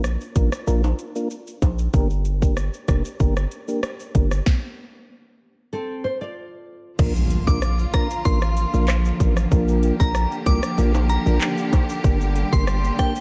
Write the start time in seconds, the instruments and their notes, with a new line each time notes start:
Already playing: 808-style bass A#1
0.04 cross-stick, shaker
0.21 shaker
0.35 808-style bass A1, tonewheel organ A#3 D4 F4 A#4, kick, closed hi-hat, shaker
0.52 cross-stick, shaker
0.67 808-style bass A#1, tonewheel organ A#3 D4 F4 A#4, shaker
0.84 high timbale, shaker
0.99 closed hi-hat, shaker
1.15 tonewheel organ A#3 D4 F4 A#4, shaker
1.31 shaker
1.47 shaker
1.62 808-style bass A#1, kick, closed hi-hat, high timbale, shaker
1.79 shaker
1.93 808-style bass G1, tonewheel organ A#3 D4 G4 A#4, kick, shaker
2.10 shaker
2.25 closed hi-hat, shaker
2.42 tonewheel organ A#3 D4 G4 A#4, kick, shaker
2.57 cross-stick, shaker
2.73 shaker
2.88 808-style bass F1, tonewheel organ A#3 D4 G4 A#4, kick, cross-stick, closed hi-hat, shaker
3.05 shaker
3.20 808-style bass G1, tonewheel organ A#3 D4 G4 A#4, kick, shaker
3.37 cross-stick, shaker
3.51 closed hi-hat, shaker
3.68 tonewheel organ A#3 D4 G4 A#4, shaker
3.83 cross-stick, shaker
4.00 shaker
4.14 808-style bass G1, tonewheel organ A#3 D4 G4 A#4, kick, closed hi-hat, shaker
4.31 cross-stick, shaker
4.46 kick, snare
5.73 nylon-string guitar C4 A4
6.04 nylon-string guitar C5
6.21 nylon-string guitar F4 D5
6.99 808-style bass A#1, string section D3 F3 A#3 F4, tonewheel organ A#3 D4 F4 A#4, kick, crash, impact, shaker
7.16 shaker
7.30 closed hi-hat, shaker
7.47 808-style bass A#1, tonewheel organ A#3 D4 F4 A#4, synth bell D6, kick, shaker
7.62 cross-stick, shaker
7.79 shaker
7.93 tonewheel organ A#3 D4 F4 A#4, synth bell A#5, kick, cross-stick, closed hi-hat, shaker
8.10 shaker
8.25 808-style bass A1, tonewheel organ A#3 D4 F4 A#4, synth bell C6, kick, shaker
8.42 cross-stick, shaker
8.57 closed hi-hat, shaker
8.73 808-style bass A#1, tonewheel organ A#3 D4 F4 A#4, shaker
8.88 cross-stick, clap, shaker
9.05 shaker
9.20 808-style bass A1, tonewheel organ A#3 D4 F4 A#4, kick, closed hi-hat, shaker
9.37 cross-stick, shaker
9.51 808-style bass A#1, tonewheel organ A#3 D4 F4 A#4, string section G4, kick, shaker
9.68 shaker
9.83 closed hi-hat, shaker
10.00 808-style bass A#1, tonewheel organ A#3 D4 F4 A#4, synth bell A#5, kick, shaker
10.15 cross-stick, shaker
10.31 shaker
10.46 808-style bass C2, tonewheel organ A#3 D4 F4 A#4, synth bell D6, kick, closed hi-hat, shaker
10.63 cross-stick, shaker
10.78 808-style bass A#1, tonewheel organ A#3 D4 F4 A#4, shaker
10.94 high timbale, shaker
11.09 synth bell A#5, closed hi-hat, shaker
11.26 808-style bass A#1, tonewheel organ A#3 D4 F4 A#4, shaker
11.41 clap, high timbale, shaker
11.58 shaker
11.73 kick, closed hi-hat, high timbale, shaker
11.89 shaker
12.04 808-style bass G1, string section G3, tonewheel organ A#3 D4 G4 A#4, kick, shaker
12.21 shaker
12.36 closed hi-hat, shaker
12.52 808-style bass G1, tonewheel organ A#3 D4 G4 A#4, synth bell C6, kick, shaker
12.67 cross-stick, shaker
12.84 shaker
12.98 tonewheel organ A#3 D4 G4 A#4, synth bell G5, kick, cross-stick, closed hi-hat, shaker
13.16 shaker